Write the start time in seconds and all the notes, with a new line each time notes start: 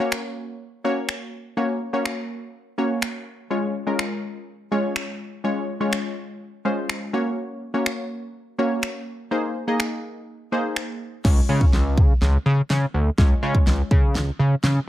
0.00 A#3 C#4 F#4 C#5
0.12 finger snap
0.84 A#3 C#4 F#4 C#5
1.09 finger snap
1.57 A#3 C#4 F#4 C#5
1.93 A#3 C#4 F#4 C#5
2.05 finger snap
2.78 A#3 C#4 F#4 C#5
3.02 finger snap
3.50 G#3 C#4 F4 C#5
3.87 G#3 C#4 F4 A#4
3.99 finger snap
4.71 G#3 C#4 F4 C#5
4.96 finger snap
5.44 G#3 C#4 F4 C#5
5.80 G#3 C#4 F4 C#5
5.93 finger snap
6.65 G#3 C#4 F4 C5
6.89 finger snap
7.13 A#3 C#4 F#4 C#5
7.74 A#3 C#4 F#4 C#5
7.86 finger snap
8.58 A#3 C#4 F#4 C#5
8.83 finger snap
9.31 A#3 D#4 G#4 C5
9.67 A#3 D#4 G#4 D#5
9.80 finger snap
10.52 A#3 D#4 G#4 C5
10.76 finger snap
11.24 C#2 G#3 C#4 F4 C#5, kick, snare, crash
11.49 C#3 G#3 C#4 F4 C#5
11.61 kick
11.73 C#2, snare
11.97 C#3, kick
12.22 C#2, snare
12.46 C#3
12.70 C#3, snare
12.94 D2
13.18 C#2 G#3 C#4 F4 C#5, kick, snare
13.42 C#3 G#3 C#4 F4 C#5
13.55 kick
13.67 C#2, snare
13.91 C#3, kick
14.15 C#2, snare
14.39 C#3
14.64 C#3, snare